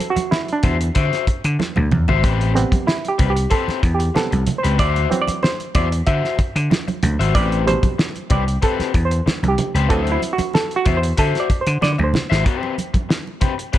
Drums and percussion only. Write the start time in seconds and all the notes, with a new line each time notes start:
0.00 closed hi-hat, high conga
0.16 closed hi-hat, high conga
0.32 snare, muted conga
0.48 closed hi-hat, muted conga
0.63 kick, closed hi-hat, high conga, low conga
0.81 closed hi-hat
0.95 kick, closed hi-hat, muted conga
1.13 snare, closed hi-hat
1.27 kick, closed hi-hat
1.44 closed hi-hat
1.60 snare, muted conga, high conga
1.76 high tom, high conga
1.91 mid tom, high conga, low conga
2.08 floor tom, low conga
2.23 kick, closed hi-hat, muted conga
2.41 closed hi-hat
2.56 closed hi-hat, high conga
2.72 kick, closed hi-hat, high conga
2.88 snare, muted conga
3.05 closed hi-hat, muted conga
3.19 kick, closed hi-hat, high conga, low conga
3.36 closed hi-hat
3.51 kick, closed hi-hat, muted conga
3.69 snare, muted conga
3.83 kick, closed hi-hat
4.00 closed hi-hat
4.16 snare, high conga
4.32 closed hi-hat, muted conga, high conga
4.46 closed hi-hat, high conga, low conga
4.64 closed hi-hat
4.79 kick, closed hi-hat, muted conga
4.96 closed hi-hat, muted conga
5.12 closed hi-hat, high conga
5.28 closed hi-hat, high conga
5.43 snare, muted conga
5.60 closed hi-hat, muted conga
5.75 kick, closed hi-hat, high conga, low conga
5.92 closed hi-hat
6.07 kick, closed hi-hat, muted conga
6.24 snare
6.39 kick, closed hi-hat
6.56 closed hi-hat
6.71 snare, muted conga, high conga
6.88 closed hi-hat, muted conga, high conga
7.03 closed hi-hat, high conga, low conga
7.21 closed hi-hat
7.35 kick, closed hi-hat, muted conga
7.52 closed hi-hat
7.68 closed hi-hat, high conga
7.83 kick, closed hi-hat, high conga
7.99 snare, muted conga
8.16 closed hi-hat, muted conga
8.30 kick, closed hi-hat, high conga, low conga
8.48 closed hi-hat
8.62 kick, closed hi-hat, muted conga
8.80 snare, closed hi-hat, muted conga
8.94 kick, closed hi-hat
9.11 closed hi-hat
9.27 snare, high conga
9.44 closed hi-hat, muted conga, high conga
9.58 closed hi-hat, high conga, low conga
9.76 closed hi-hat
9.90 kick, closed hi-hat
10.07 closed hi-hat, muted conga
10.22 closed hi-hat, high conga
10.38 closed hi-hat, high conga
10.54 snare, muted conga
10.71 closed hi-hat
10.86 kick, closed hi-hat, high conga, low conga
11.03 closed hi-hat
11.17 kick, closed hi-hat, muted conga
11.35 snare, closed hi-hat
11.50 kick, closed hi-hat
11.67 closed hi-hat
11.82 snare, muted conga, high conga
11.99 muted conga, high conga
12.14 snare, high conga, low conga
12.32 snare
12.46 kick, closed hi-hat
12.63 muted conga
12.78 closed hi-hat, high conga
12.94 kick, closed hi-hat, high conga
13.10 snare, muted conga
13.27 muted conga
13.41 kick, closed hi-hat, high conga, low conga
13.59 closed hi-hat
13.73 kick, closed hi-hat, muted conga